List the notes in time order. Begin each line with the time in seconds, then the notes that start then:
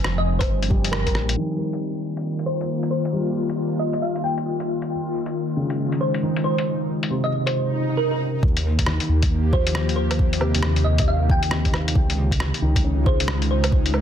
Already playing: F1 D#3 F3 G#3 C4 G#5
0.04 cross-stick
0.18 D#5
0.27 F1
0.39 C5, kick, closed hi-hat, low woodblock
0.48 G1
0.63 closed hi-hat
0.70 G3, kick
0.84 closed hi-hat
0.92 A#4, cross-stick
1.06 A#4, kick, closed hi-hat
1.15 A#1, cross-stick
1.29 closed hi-hat
1.37 D#3
1.56 G3
1.73 A#3, closed hi-hat
1.82 F4
2.17 closed hi-hat
2.39 closed hi-hat
2.46 C5
2.61 closed hi-hat
2.83 closed hi-hat
2.91 C5
3.05 closed hi-hat
3.13 G3
3.49 closed hi-hat
3.79 D#5
3.93 D#5, closed hi-hat
4.02 F5
4.16 closed hi-hat
4.24 G5
4.38 closed hi-hat
4.60 closed hi-hat
4.82 closed hi-hat
4.90 D#3
5.26 G#3, closed hi-hat
5.57 C#3
5.70 closed hi-hat
5.83 D#4
5.92 closed hi-hat
6.01 C5
6.14 closed hi-hat
6.23 D#3
6.36 closed hi-hat
6.44 C5
6.58 closed hi-hat
7.03 closed hi-hat
7.10 C3
7.24 D#5
7.46 C5, closed hi-hat
7.55 swell
7.97 A#4
8.11 A#4
8.43 D#2 D#3, kick
8.52 A#3
8.57 closed hi-hat
8.74 G4
8.79 kick, closed hi-hat
8.86 D#3, cross-stick
9.00 closed hi-hat
9.09 D#2
9.22 kick, closed hi-hat
9.53 F3 C5, kick
9.67 closed hi-hat
9.75 cross-stick
9.89 closed hi-hat
9.96 C5
10.11 closed hi-hat, low woodblock
10.19 D#2, kick
10.33 closed hi-hat
10.41 C3, low woodblock
10.55 D#2, closed hi-hat
10.63 cross-stick
10.76 closed hi-hat
10.84 D#2 D#5
10.98 D#5, kick, closed hi-hat
11.08 F5
11.30 G5, kick
11.43 closed hi-hat
11.51 C3, cross-stick
11.65 kick, closed hi-hat
11.71 D#3, cross-stick, low woodblock
11.88 closed hi-hat
11.95 C#2 C#3, kick
12.10 closed hi-hat
12.16 D#4
12.28 G#3, kick, closed hi-hat
12.40 cross-stick
12.54 closed hi-hat
12.62 C#2 D#3
12.76 kick, closed hi-hat
12.84 C#4
13.03 F4 G#4 C5, kick
13.20 closed hi-hat
13.28 cross-stick
13.42 closed hi-hat
13.51 C5
13.64 closed hi-hat, low woodblock
13.72 C#2, kick
13.86 closed hi-hat
13.94 A#4, low woodblock